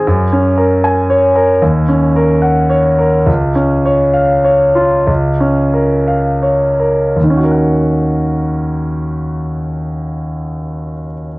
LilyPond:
\new Staff \with { instrumentName = "Grand piano" } { \time 4/4 \key ees \minor \tempo 4 = 62 \tuplet 3/2 { ges,8 des'8 bes'8 aes''8 des''8 bes'8 ees,8 des'8 bes'8 ges''8 des''8 bes'8 } | \tuplet 3/2 { des,8 des'8 des''8 f''8 des''8 f'8 des,8 des'8 bes'8 f''8 des''8 bes'8 } | <ees, ees des' ges' bes' ges''>1 | }